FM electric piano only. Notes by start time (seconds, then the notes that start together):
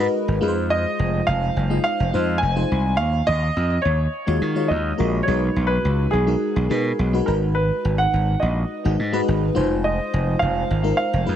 Already playing: A#4
0.00 G#3 D#4 F#4 B4
0.41 G#3 D#4 F4 B4
0.48 C5
1.70 G#3 D#4 F4 D#5
2.13 G#3 D#4 F4 C5
2.56 G#3 D#4 F4 C5
4.27 G#3 F4 F#4 C#5
4.55 G#3 F4 F#4 C#5
4.98 G#3 F4 F#4 A#4
5.27 G#3 D#4 F#4 B4
6.27 G#3 D#4 F#4 A#4
6.69 G#3 D#4 F#4 B4
7.13 G#3 D#4 F#4 B4
7.27 G#3 D#4 F#4 B4
8.84 G#3 D#4 F#4 G#4
9.13 G#3 D#4 F#4 B4
9.55 G#3 D#4 F4 C5
10.83 G#3 D#4 F4 A#4
11.26 G#3 D#4 F4 B4